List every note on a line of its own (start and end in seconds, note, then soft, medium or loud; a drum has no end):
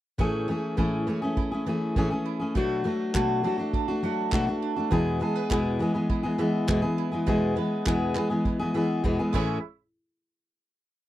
0.18 0.48 A2 medium
0.18 0.47 E3 medium
0.18 2.55 A3 medium
0.18 0.48 A3 medium
0.18 0.49 C#4 medium
0.18 0.49 G#4 medium
0.18 kick medium
0.48 0.76 E3 soft
0.48 0.77 A3 medium
0.48 0.77 C#4 medium
0.48 0.78 G#4 medium
0.48 1.06 C#5 soft
0.77 1.07 A2 medium
0.77 1.06 E3 medium
0.77 1.07 A3 medium
0.77 1.08 C#4 medium
0.77 1.36 E4 medium
0.77 1.08 G#4 medium
0.77 kick medium
1.07 1.22 E3 medium
1.07 1.23 A3 medium
1.07 1.22 C#4 medium
1.07 1.21 G#4 medium
1.07 1.95 C#5 soft
1.22 1.53 A3 soft
1.22 1.52 C#4 medium
1.22 1.50 G#4 medium
1.37 2.24 E4 medium
1.37 kick medium
1.52 1.66 A3 soft
1.52 1.67 C#4 soft
1.52 1.67 G#4 medium
1.66 1.96 E3 medium
1.66 1.96 A3 medium
1.66 1.97 C#4 medium
1.66 1.97 G#4 medium
1.66 2.61 G#5 medium
1.96 2.11 A2 medium
1.96 2.11 E3 medium
1.96 2.12 A3 medium
1.96 2.11 C#4 medium
1.96 2.09 G#4 medium
1.96 2.61 C#5 soft
1.96 kick loud
2.11 2.41 A3 soft
2.11 2.40 C#4 soft
2.11 2.38 G#4 medium
2.26 2.61 E4 medium
2.39 2.55 A3 soft
2.39 2.56 C#4 soft
2.39 2.55 G#4 medium
2.55 2.85 B2 medium
2.55 2.83 F#3 medium
2.55 4.91 A3 medium
2.55 2.84 A3 medium
2.55 2.85 D4 medium
2.55 2.86 F#4 medium
2.55 kick loud
2.84 3.13 F#3 medium
2.84 3.14 A3 medium
2.84 3.14 D4 medium
2.84 3.15 F#4 medium
2.84 3.43 A4 soft
3.14 3.44 B2 medium
3.14 3.42 F#3 medium
3.14 3.43 A3 medium
3.14 3.73 D4 medium
3.14 3.44 D4 medium
3.14 3.45 F#4 medium
3.14 kick medium
3.14 clap loud
3.43 3.58 F#3 medium
3.43 3.59 A3 medium
3.43 3.58 D4 medium
3.43 3.57 F#4 medium
3.43 4.32 A4 medium
3.58 3.89 A3 soft
3.58 3.88 D4 medium
3.58 3.87 F#4 soft
3.73 4.61 D4 medium
3.73 kick loud
3.88 4.03 A3 soft
3.88 4.04 D4 soft
3.88 4.03 F#4 medium
4.03 4.31 F#3 soft
4.03 4.32 A3 medium
4.03 4.32 D4 medium
4.03 4.33 F#4 medium
4.03 4.98 F#5 medium
4.32 4.47 B2 medium
4.32 4.47 F#3 medium
4.32 4.48 A3 medium
4.32 4.47 D4 medium
4.32 4.46 F#4 medium
4.32 4.98 A4 medium
4.32 kick loud
4.32 clap loud
4.47 4.78 A3 soft
4.47 4.77 D4 medium
4.47 4.75 F#4 soft
4.62 4.98 D4 medium
4.76 4.92 A3 soft
4.76 4.92 D4 soft
4.76 4.91 F#4 medium
4.91 5.21 E2 medium
4.91 5.21 B2 medium
4.91 5.19 E3 medium
4.91 7.26 G#3 medium
4.91 5.20 G#3 medium
4.91 5.21 B3 medium
4.91 5.21 G#4 medium
4.91 kick medium
5.20 5.49 E3 medium
5.20 5.49 G#3 medium
5.20 5.50 B3 medium
5.20 5.50 G#4 medium
5.20 5.36 A4 soft
5.36 5.79 B4 soft
5.50 5.80 E2 medium
5.50 5.80 B2 medium
5.50 5.78 E3 medium
5.50 5.79 G#3 medium
5.50 5.80 B3 medium
5.50 6.09 E4 medium
5.50 5.81 G#4 medium
5.50 kick loud
5.50 clap loud
5.79 5.94 E3 medium
5.79 5.95 G#3 medium
5.79 5.94 B3 medium
5.79 5.93 G#4 medium
5.79 6.67 B4 soft
5.94 6.25 E3 soft
5.94 6.24 G#3 soft
5.94 6.23 B3 soft
5.94 6.22 G#4 medium
6.10 6.98 E4 medium
6.10 kick loud
6.23 6.37 E3 soft
6.23 6.38 G#3 soft
6.23 6.39 B3 soft
6.23 6.39 G#4 medium
6.38 6.67 E3 medium
6.38 6.67 G#3 medium
6.38 6.68 B3 medium
6.38 6.68 G#4 medium
6.38 8.74 E5 medium
6.67 6.83 E2 medium
6.67 6.83 B2 medium
6.67 6.83 E3 medium
6.67 6.82 G#3 medium
6.67 6.81 B3 medium
6.67 6.81 G#4 medium
6.67 7.55 B4 soft
6.67 kick loud
6.67 clap loud
6.82 7.13 E3 soft
6.82 7.13 G#3 soft
6.82 7.12 B3 medium
6.82 7.10 G#4 medium
6.98 7.86 E4 medium
7.12 7.27 E3 soft
7.12 7.27 G#3 medium
7.12 7.27 B3 medium
7.12 7.27 G#4 soft
7.26 7.57 E2 medium
7.26 7.57 B2 medium
7.26 7.54 E3 medium
7.26 9.32 G#3 medium
7.26 7.55 G#3 medium
7.26 7.56 B3 medium
7.26 7.57 G#4 medium
7.26 kick loud
7.56 7.85 E3 medium
7.56 7.86 G#3 medium
7.56 7.86 B3 medium
7.56 7.86 G#4 medium
7.56 8.14 B4 medium
7.86 8.16 E2 medium
7.86 8.16 B2 medium
7.86 8.14 E3 medium
7.86 8.15 G#3 medium
7.86 8.16 B3 medium
7.86 8.45 E4 medium
7.86 8.17 G#4 medium
7.86 kick loud
7.86 clap loud
8.15 8.30 E3 soft
8.15 8.30 G#3 medium
8.15 8.30 B3 medium
8.15 8.29 G#4 medium
8.15 9.03 B4 soft
8.15 clap medium
8.30 8.61 E3 soft
8.30 8.61 G#3 soft
8.30 8.60 B3 soft
8.30 8.58 G#4 medium
8.45 9.33 E4 medium
8.45 kick loud
8.59 8.73 E3 soft
8.59 8.74 G#3 soft
8.59 8.75 B3 soft
8.59 8.75 G#4 medium
8.74 9.03 E3 medium
8.74 9.04 G#3 medium
8.74 9.04 B3 medium
8.74 9.04 G#4 medium
8.74 9.35 E5 medium
9.04 9.19 E2 medium
9.04 9.19 B2 medium
9.04 9.19 E3 medium
9.04 9.19 G#3 medium
9.04 9.19 B3 medium
9.04 9.18 G#4 medium
9.04 9.34 B4 soft
9.04 kick loud
9.19 9.33 E3 soft
9.19 9.34 G#3 soft
9.19 9.34 B3 medium
9.19 9.34 G#4 soft
9.33 9.57 A2 medium
9.33 9.58 E3 medium
9.33 9.57 G#3 medium
9.33 9.58 A3 medium
9.33 9.58 C#4 medium
9.33 9.57 E4 medium
9.33 9.58 G#4 medium
9.33 9.58 C#5 medium
9.33 9.58 E5 medium
9.33 kick medium
9.33 crash medium